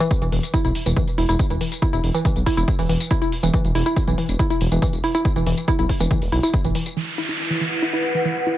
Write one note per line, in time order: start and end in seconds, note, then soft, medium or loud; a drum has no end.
0.00 0.10 E3 loud
0.00 tambourine medium
0.11 kick loud
0.11 closed hi-hat medium
0.11 tambourine medium
0.22 0.28 E1 medium
0.22 0.31 E3 medium
0.22 closed hi-hat soft
0.22 tambourine soft
0.32 0.39 E1 loud
0.32 0.43 E3 medium
0.32 open hi-hat loud
0.43 closed hi-hat soft
0.43 tambourine medium
0.54 0.61 E4 medium
0.54 kick loud
0.54 closed hi-hat medium
0.54 tambourine medium
0.65 0.71 B1 medium
0.65 0.75 E4 medium
0.65 closed hi-hat soft
0.65 tambourine soft
0.75 open hi-hat loud
0.86 0.92 E1 medium
0.86 0.95 E3 medium
0.86 closed hi-hat soft
0.86 tambourine medium
0.97 1.07 E3 medium
0.97 kick loud
0.97 closed hi-hat medium
0.97 tambourine medium
1.08 closed hi-hat soft
1.08 tambourine soft
1.18 1.25 E1 loud
1.18 1.25 E4 medium
1.18 open hi-hat loud
1.29 1.35 E1 loud
1.29 1.39 E4 medium
1.29 closed hi-hat soft
1.29 tambourine medium
1.39 kick loud
1.39 closed hi-hat medium
1.39 tambourine medium
1.50 1.57 E1 medium
1.50 1.60 E3 medium
1.50 closed hi-hat medium
1.50 tambourine soft
1.61 1.71 E3 medium
1.61 open hi-hat loud
1.72 closed hi-hat medium
1.72 tambourine medium
1.82 1.89 E4 medium
1.82 kick loud
1.82 closed hi-hat medium
1.82 tambourine medium
1.93 2.00 E1 loud
1.93 2.03 E4 medium
1.93 closed hi-hat soft
1.93 tambourine soft
2.04 2.10 E1 loud
2.04 open hi-hat loud
2.15 2.24 E3 medium
2.15 closed hi-hat soft
2.15 tambourine medium
2.25 2.35 E3 medium
2.25 kick loud
2.25 closed hi-hat medium
2.25 tambourine medium
2.36 2.42 B1 medium
2.36 closed hi-hat soft
2.36 tambourine soft
2.46 2.53 E4 medium
2.46 kick medium
2.46 open hi-hat loud
2.57 2.64 E1 medium
2.57 2.67 E4 medium
2.57 closed hi-hat soft
2.57 tambourine medium
2.68 kick loud
2.68 closed hi-hat medium
2.68 tambourine medium
2.79 2.85 E1 medium
2.79 2.88 E3 medium
2.79 open hi-hat medium
2.79 tambourine soft
2.89 2.96 E1 medium
2.89 3.00 E3 medium
2.89 open hi-hat loud
3.00 closed hi-hat soft
3.00 tambourine medium
3.11 3.18 E4 medium
3.11 kick loud
3.11 closed hi-hat medium
3.11 tambourine medium
3.22 3.32 E4 medium
3.22 closed hi-hat medium
3.22 tambourine soft
3.32 open hi-hat loud
3.43 3.50 E1 medium
3.43 3.52 E3 medium
3.43 closed hi-hat medium
3.43 tambourine medium
3.54 3.64 E3 medium
3.54 kick loud
3.54 closed hi-hat medium
3.54 tambourine medium
3.64 3.71 E1 loud
3.64 closed hi-hat soft
3.64 tambourine soft
3.75 3.82 E1 loud
3.75 3.82 E4 medium
3.75 open hi-hat loud
3.86 3.96 E4 medium
3.86 tambourine medium
3.96 kick loud
3.96 closed hi-hat medium
3.96 tambourine medium
4.07 4.14 B1 medium
4.07 4.17 E3 medium
4.07 closed hi-hat medium
4.07 tambourine soft
4.18 4.28 E3 medium
4.18 open hi-hat loud
4.29 4.35 E1 medium
4.29 closed hi-hat medium
4.29 tambourine medium
4.39 4.46 E4 medium
4.39 kick loud
4.39 closed hi-hat medium
4.39 tambourine medium
4.50 4.60 E4 medium
4.50 closed hi-hat medium
4.50 tambourine soft
4.61 4.67 E1 loud
4.61 open hi-hat loud
4.72 4.78 E1 loud
4.72 4.81 E3 medium
4.72 closed hi-hat medium
4.72 tambourine medium
4.82 4.93 E3 medium
4.82 kick loud
4.82 closed hi-hat medium
4.82 tambourine medium
4.93 5.00 E1 medium
4.93 closed hi-hat medium
4.93 tambourine soft
5.04 5.11 E4 medium
5.04 open hi-hat loud
5.15 5.25 E4 medium
5.15 closed hi-hat medium
5.15 tambourine medium
5.25 kick loud
5.25 closed hi-hat medium
5.25 tambourine medium
5.36 5.42 E1 loud
5.36 5.45 E3 medium
5.36 closed hi-hat medium
5.36 tambourine soft
5.47 5.53 E1 loud
5.47 5.57 E3 medium
5.47 open hi-hat loud
5.58 closed hi-hat medium
5.58 tambourine medium
5.68 5.75 E4 medium
5.68 kick loud
5.68 closed hi-hat medium
5.68 tambourine medium
5.79 5.85 B1 medium
5.79 5.89 E4 medium
5.79 closed hi-hat medium
5.79 tambourine soft
5.89 kick medium
5.89 open hi-hat loud
6.00 6.07 E1 medium
6.00 6.10 E3 medium
6.00 closed hi-hat medium
6.00 tambourine medium
6.11 6.21 E3 medium
6.11 kick loud
6.11 closed hi-hat medium
6.11 tambourine medium
6.22 6.28 E1 medium
6.22 open hi-hat medium
6.22 tambourine soft
6.32 6.39 B1 medium
6.32 6.39 E4 medium
6.32 open hi-hat loud
6.43 6.53 E4 medium
6.43 closed hi-hat medium
6.43 tambourine medium
6.54 kick loud
6.54 closed hi-hat medium
6.54 tambourine medium
6.65 6.71 G1 medium
6.65 6.74 E3 medium
6.65 closed hi-hat medium
6.65 tambourine soft
6.75 6.86 E3 medium
6.75 open hi-hat loud
6.86 closed hi-hat medium
6.86 tambourine medium
6.97 7.07 E3 medium
6.97 8.58 E4 medium
6.97 downlifter medium
7.18 7.25 E4 medium
7.29 7.39 E4 medium
7.39 8.58 B4 medium
7.48 7.60 E3 medium
7.48 8.58 F#5 medium
7.61 7.71 E3 medium
7.82 7.89 E4 medium
7.93 8.03 E4 medium
8.15 8.24 E3 medium
8.25 8.36 E3 medium
8.47 8.54 E4 medium